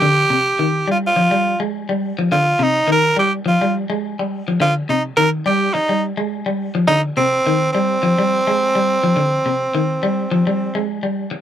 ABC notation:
X:1
M:4/4
L:1/16
Q:"Swing 16ths" 1/4=105
K:Cm
V:1 name="Tenor saxophone"
G6 F F4 z4 z | F2 E2 B2 G2 F2 z6 | F2 E2 B2 G2 E2 z6 | E2 C4 C8- C2- |
C12 z4 |]
V:2 name="Clean electric guitar" clef=bass
D,2 C,2 E,2 G,2 F, G,2 A,2 G,2 F, | D,2 C,2 E,2 G,2 F, G,2 A,2 G,2 F, | D,2 C,2 E,2 G,2 z G,2 A,2 G,2 F, | D,2 C,2 E,2 G,2 F, G,2 A,2 G,2 F, |
D,2 C,2 E,2 G,2 F, G,2 A,2 G,2 z |]